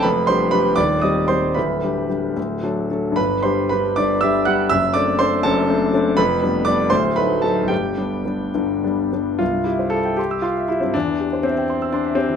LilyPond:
<<
  \new Staff \with { instrumentName = "Grand piano" } { \time 6/8 \key g \major \tempo 4. = 77 <b' b''>8 <c'' c'''>8 <b' b''>8 <d'' d'''>8 <ees'' ees'''>8 <c'' c'''>8 | <b' b''>4. r4. | <b' b''>8 <c'' c'''>8 <b' b''>8 <d'' d'''>8 <e'' e'''>8 <fis'' fis'''>8 | <e'' e'''>8 <d'' d'''>8 <c'' c'''>8 <a' a''>4. |
<b' b''>4 <d'' d'''>8 <c'' c'''>8 <b' b''>8 <a' a''>8 | <g' g''>4. r4. | \key c \major f'8 e'8 a'8 g'8 f'8 e'16 c'16 | d'4 c'4 d'8 c'8 | }
  \new Staff \with { instrumentName = "Grand piano" } { \time 6/8 \key g \major <f,, f,>8 <g d' g'>8 <g d' g'>8 <ees,, ees,>8 <g c' g'>8 <g c' g'>8 | <d,, d,>8 <g d' g'>8 <g d' g'>8 <d,, d,>8 <fis d' a'>8 <fis d' a'>8 | <g,, g,>8 <g d' g'>8 <g d' g'>8 <g,, g,>8 <g d' g'>8 <g d' g'>8 | <fis,, fis,>8 <a c' d'>8 <a c' d'>8 <fis,, fis,>8 <a c' d'>8 <a c' d'>8 |
<f,, f,>8 <g b d'>8 <g b d'>8 <d,, d,>8 <fis a ees'>8 <fis a ees'>8 | <g,, g,>8 <g b d'>8 <g b d'>8 <g,, g,>8 <g b d'>8 <g b d'>8 | \key c \major c,16 g,16 g'16 c''16 e''16 g''16 c'''16 e'''16 c'''16 e''16 g'16 g,16 | e,16 e16 g'16 c''16 e''16 g''16 c'''16 e'''16 c'''16 e''16 g'16 e16 | }
>>